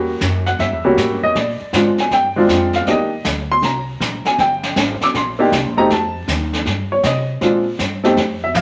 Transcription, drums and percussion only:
0.21 kick, snare, hi-hat pedal
0.46 snare
0.59 brush sweep, kick, snare
0.97 kick, snare, hi-hat pedal
1.35 brush sweep, kick, snare
1.73 kick, snare, hi-hat pedal
1.98 snare
2.11 brush sweep, kick, snare
2.49 kick, snare, hi-hat pedal
2.73 snare
2.86 brush sweep, kick, snare
3.25 kick, snare, hi-hat pedal
3.63 brush sweep, kick, snare
4.00 kick, snare, hi-hat pedal
4.25 snare
4.38 brush sweep, kick, snare
4.63 snare
4.76 kick, snare, hi-hat pedal
5.01 snare
5.14 brush sweep, kick, snare
5.52 kick, snare, hi-hat pedal
5.90 brush sweep, kick, snare
6.28 kick, snare, hi-hat pedal
6.53 snare
6.66 brush sweep, kick, snare
7.03 kick, snare, hi-hat pedal
7.41 brush sweep, kick, snare
7.79 kick, snare, hi-hat pedal
8.04 snare
8.17 brush sweep, kick, snare
8.55 floor tom, hi-hat pedal

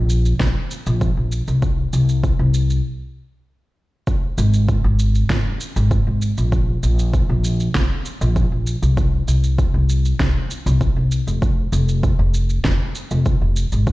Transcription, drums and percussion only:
0.10 shaker
0.26 shaker
0.40 kick, snare, shaker
0.71 shaker
0.87 shaker
1.01 kick, shaker
1.32 shaker
1.48 shaker
1.62 kick, shaker
1.93 shaker
2.09 shaker
2.24 kick, shaker
2.54 shaker
2.70 shaker
4.07 kick, shaker
4.38 shaker
4.54 shaker
4.69 kick, shaker
4.99 shaker
5.15 shaker
5.30 kick, snare, shaker
5.60 shaker
5.76 shaker
5.91 kick, shaker
6.22 shaker
6.38 shaker
6.52 kick, shaker
6.83 shaker
6.99 shaker
7.14 kick, shaker
7.44 shaker
7.60 shaker
7.75 kick, snare, shaker
8.05 shaker
8.21 shaker
8.36 kick, shaker
8.67 shaker
8.83 shaker
8.97 kick, shaker
9.28 shaker
9.44 shaker
9.58 kick, shaker
9.89 shaker
10.05 shaker
10.20 kick, snare, shaker
10.51 shaker
10.67 shaker
10.81 kick, shaker
11.12 shaker
11.28 shaker
11.42 kick, shaker
11.73 shaker
11.89 shaker
12.03 kick, shaker
12.34 shaker
12.50 shaker
12.65 kick, snare, shaker
12.95 shaker
13.11 shaker
13.26 kick, shaker
13.56 shaker
13.72 shaker
13.87 kick, shaker

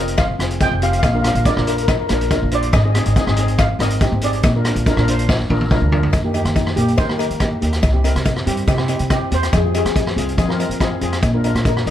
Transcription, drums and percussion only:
0.08 closed hi-hat
0.18 kick, cross-stick, closed hi-hat, cowbell
0.40 cross-stick, closed hi-hat
0.50 closed hi-hat
0.61 kick, closed hi-hat, cowbell
0.82 closed hi-hat
0.93 closed hi-hat
1.03 kick, closed hi-hat, cowbell
1.24 cross-stick, closed hi-hat
1.35 closed hi-hat
1.45 kick, closed hi-hat, cowbell
1.57 cross-stick
1.67 closed hi-hat
1.78 closed hi-hat
1.88 kick, cross-stick, closed hi-hat, cowbell
2.09 cross-stick, closed hi-hat
2.21 closed hi-hat
2.31 kick, closed hi-hat, cowbell
2.51 closed hi-hat
2.62 closed hi-hat
2.73 kick, closed hi-hat, cowbell
2.95 cross-stick, closed hi-hat
3.05 closed hi-hat
3.16 kick, closed hi-hat, cowbell
3.27 cross-stick
3.36 closed hi-hat
3.48 closed hi-hat
3.58 kick, cross-stick, closed hi-hat, cowbell
3.80 cross-stick, closed hi-hat
3.90 closed hi-hat
4.00 kick, closed hi-hat, cowbell
4.21 closed hi-hat
4.33 closed hi-hat
4.43 kick, closed hi-hat, cowbell
4.65 cross-stick, closed hi-hat
4.76 closed hi-hat
4.86 kick, closed hi-hat, cowbell
4.97 cross-stick
5.08 closed hi-hat
5.19 closed hi-hat
5.29 kick, snare, cowbell
5.50 high tom
5.61 high tom
5.71 kick, mid tom, cowbell
5.92 floor tom
6.03 floor tom
6.13 kick, closed hi-hat, cowbell
6.34 closed hi-hat, cowbell
6.45 cross-stick, closed hi-hat
6.56 kick, closed hi-hat, cowbell
6.67 cross-stick
6.77 closed hi-hat
6.88 closed hi-hat
6.98 kick, closed hi-hat, cowbell
7.09 cross-stick
7.19 closed hi-hat, cowbell
7.30 closed hi-hat
7.40 kick, cross-stick, closed hi-hat, cowbell
7.62 closed hi-hat
7.73 cross-stick, closed hi-hat
7.83 kick, closed hi-hat, cowbell
8.04 closed hi-hat, cowbell
8.16 cross-stick, closed hi-hat
8.25 kick, closed hi-hat, cowbell
8.36 cross-stick
8.47 closed hi-hat
8.57 closed hi-hat
8.67 kick, closed hi-hat, cowbell
8.78 cross-stick
8.88 closed hi-hat, cowbell
8.99 closed hi-hat
9.10 kick, cross-stick, closed hi-hat, cowbell
9.32 closed hi-hat
9.43 cross-stick, closed hi-hat
9.53 kick, closed hi-hat, cowbell
9.74 closed hi-hat, cowbell
9.86 cross-stick, closed hi-hat
9.96 kick, closed hi-hat, cowbell
10.07 cross-stick
10.18 closed hi-hat
10.29 closed hi-hat
10.38 kick, closed hi-hat, cowbell
10.50 cross-stick
10.60 closed hi-hat, cowbell
10.71 closed hi-hat
10.80 kick, cross-stick, closed hi-hat, cowbell
11.01 closed hi-hat
11.13 cross-stick, closed hi-hat
11.22 kick, closed hi-hat, cowbell
11.44 closed hi-hat, cowbell
11.55 cross-stick, closed hi-hat
11.65 kick, closed hi-hat, cowbell
11.77 cross-stick
11.87 closed hi-hat

